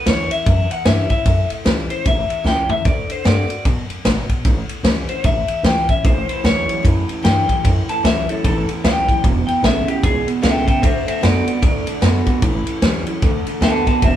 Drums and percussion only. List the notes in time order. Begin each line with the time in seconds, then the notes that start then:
0.06 snare, ride
0.31 ride
0.46 kick, ride
0.71 ride
0.85 snare, ride
1.10 kick, ride
1.25 kick, ride
1.50 ride
1.65 snare, ride
1.90 ride
2.05 kick, ride
2.30 ride
2.45 snare
2.69 floor tom
2.85 kick, ride
3.10 ride
3.25 snare, ride
3.50 ride
3.65 kick, ride
3.90 ride
4.05 snare, ride
4.29 kick, ride
4.45 kick, ride
4.69 ride
4.84 snare, ride
5.09 ride
5.24 kick, ride
5.48 ride
5.64 snare, ride
5.89 kick, ride
6.04 kick, ride
6.29 ride
6.45 snare, ride
6.69 ride
6.85 kick, ride
7.09 ride
7.25 snare, ride
7.49 kick, ride
7.65 kick, ride
7.89 ride
8.05 snare, ride
8.29 ride
8.44 kick, ride
8.69 ride
8.84 snare, ride
9.08 kick, ride
9.24 kick, ride
9.48 ride
9.64 snare, ride
9.88 ride
10.03 kick, ride
10.28 ride
10.43 snare, ride
10.68 kick, ride
10.83 kick, ride
11.08 ride
11.23 snare, ride
11.48 ride
11.63 kick, ride
11.87 ride
12.02 snare, ride
12.26 kick, ride
12.42 kick, ride
12.67 ride
12.82 snare, ride
13.06 ride
13.22 kick, ride
13.46 ride
13.62 snare, ride
13.87 kick, ride
14.02 kick, ride